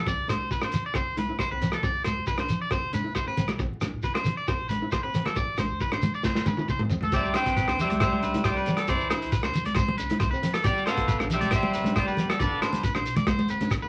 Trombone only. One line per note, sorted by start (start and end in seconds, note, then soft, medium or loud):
7.18 7.36 G3 medium
7.39 7.78 C4 medium
7.82 8.01 G3 medium
8.04 8.43 G3 medium
8.47 8.87 G3 medium
8.91 9.31 E3 medium
10.68 10.87 G3 medium
10.89 11.29 B3 medium
11.33 11.52 G3 medium
11.54 11.94 G3 medium
11.98 12.37 G3 medium
12.41 12.81 D3 medium